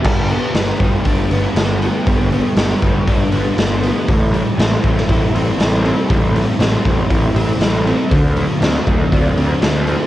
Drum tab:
CC |x---------------|----------------|----------------|----------------|
HH |--o-o-o-o-o-o-o-|o-o-o-o-o-o-o-o-|o-o-o-o-o-o-o-o-|o-o-o-o-o-o-o-o-|
SD |----o-------o---|----o-------o---|----o--o----o---|----o-------o---|
BD |o-----o-o-------|o-----o-o-------|o-----o-o-------|o-----o-o-------|

CC |----------------|
HH |o-o-o-o-o-o-o-o-|
SD |----o-------o---|
BD |o-----o-o-------|